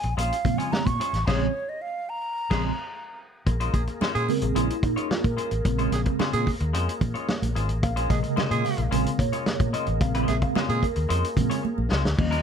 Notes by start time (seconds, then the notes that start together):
Already playing: G#5
0.03 A#1, muted clean electric guitar stroke, closed hi-hat
0.17 A#1 G#3 C#4 F4 C5 F5, closed hi-hat
0.32 closed hi-hat
0.44 A#2 C#3 F3 G#3 C4, muted clean electric guitar stroke, kick, closed hi-hat, low conga
0.58 G#3 C#4 F4 C#5 G#5, closed hi-hat
0.72 A#5, muted clean electric guitar stroke, snare, high conga
0.86 A#2 C#6, kick, closed hi-hat, high conga
1.00 G#3 C#4 F4 C5, closed hi-hat
1.13 A1, muted clean electric guitar stroke, snare, closed hi-hat
1.27 A#1 C#3 F3 G#3 C4 C#4 F4 G#4 C5 C#5, kick, snare, crash
1.35 C#4
1.69 D#5
1.82 F5
2.09 A#5
2.50 A#1 C#3 F3 G#3 C4 C#4 F4 G#4 C5, kick, snare, crash
3.46 A#1 A#3 G#4 A#4, muted clean electric guitar stroke, kick, closed hi-hat, muted conga
3.60 G#3 C#4 F4 C5, closed hi-hat
3.73 A#1 G#4, muted clean electric guitar stroke, kick, closed hi-hat, muted conga
3.87 muted clean electric guitar stroke, closed hi-hat
4.01 G#3 C#4 F4 C5, muted fingered electric bass stroke, snare, high conga
4.15 A#2 G#4, closed hi-hat
4.29 C#3 G#3 C4 A#4, muted clean electric guitar stroke, open hi-hat, muted conga
4.42 A#1 G#4, muted clean electric guitar stroke, closed hi-hat
4.55 A#1 G#3 C#4 E4 F4 C5, closed hi-hat
4.70 closed hi-hat
4.83 A#2 D#4, muted clean electric guitar stroke, kick, closed hi-hat
4.96 G#3 C#4 F4 C#5, closed hi-hat
5.10 F4, muted clean electric guitar stroke, snare, high conga
5.24 A#2 A#4, kick, closed hi-hat, high conga
5.37 G#3 C#4 F4 C5, closed hi-hat
5.51 A1, muted clean electric guitar stroke, closed hi-hat
5.65 A#1 C#3 G#3 C4, muted clean electric guitar stroke, kick, closed hi-hat, muted conga
5.79 G#3 C#4 F4 C5, closed hi-hat
5.92 A#1 G#4, muted clean electric guitar stroke, snare, closed hi-hat, muted conga
6.06 muted clean electric guitar stroke, kick, closed hi-hat
6.19 G#3 C#4 F4 C5, muted fingered electric bass stroke, snare, high conga
6.33 A#2 G#4, closed hi-hat
6.47 muted clean electric guitar stroke, kick, open hi-hat, muted conga
6.60 D#2, muted clean electric guitar stroke, closed hi-hat
6.73 F2 G#3 C#4 F4 C5, closed hi-hat
6.89 closed hi-hat
7.01 A#2, muted clean electric guitar stroke, kick, closed hi-hat, low conga
7.14 G#3 C#4 F4 C#5, closed hi-hat
7.29 snare, high conga
7.42 A#1, closed hi-hat, high conga
7.55 G#1 G#3 C#4 F4 C5, closed hi-hat
7.69 A1, muted clean electric guitar stroke, closed hi-hat
7.83 A#1 F5, muted clean electric guitar stroke, kick, closed hi-hat, muted conga
7.96 G#3 C#4 F4 C5, closed hi-hat
8.09 A#1 C3 C#3 G#3 G#4 D#5, muted clean electric guitar stroke, kick, snare, closed hi-hat, muted conga
8.23 muted clean electric guitar stroke, closed hi-hat
8.36 G#3 C#4 F4 C5, muted fingered electric bass stroke, snare, high conga
8.51 A#2 G#4, closed hi-hat
8.64 F5, muted clean electric guitar stroke, open hi-hat, muted conga
8.77 A#1, muted clean electric guitar stroke, closed hi-hat
8.91 A#1 C#3 G#3 C4 C#4 F4 C5, closed hi-hat
9.06 closed hi-hat
9.19 A#2 C#5, muted clean electric guitar stroke, kick, closed hi-hat, muted conga
9.33 G#3 C#4 F4 C#5, closed hi-hat
9.46 snare, high conga
9.60 A#2, kick, closed hi-hat, high conga
9.73 G#3 C#4 F4 C5 D#5, closed hi-hat
9.86 A1, muted clean electric guitar stroke, closed hi-hat
10.00 A#1 C#3 G#3 C4 F5, muted clean electric guitar stroke, kick, closed hi-hat, muted conga
10.14 G#3 C#4 F4 C5, closed hi-hat
10.28 A#1 G#4 E5, muted clean electric guitar stroke, snare, closed hi-hat, muted conga
10.42 F5, muted clean electric guitar stroke, kick, closed hi-hat
10.55 G#3 C#4 F4 C5, muted fingered electric bass stroke, snare, high conga
10.69 A#2 G#4, closed hi-hat
10.82 A#4, muted clean electric guitar stroke, kick, closed hi-hat, muted conga
10.96 D#2, muted clean electric guitar stroke, closed hi-hat
11.09 F2 G#3 C#4 F4 C5, closed hi-hat
11.24 closed hi-hat
11.36 A#2 C#3 G#3 C4, muted clean electric guitar stroke, kick, closed hi-hat, muted conga, low conga
11.50 G#3 C#4 F4 C#5, closed hi-hat
11.63 muted clean electric guitar stroke, high conga
11.78 A#1, high conga
11.90 C#2 G#3 C#4 F4 C5, snare
12.04 D2, muted clean electric guitar stroke, snare
12.17 D#2 F3 G3 A#3 C#4 F4 C#5 D#5, muted clean electric guitar stroke, kick, crash, muted conga
12.31 G3 C#4 F4 A#4, closed hi-hat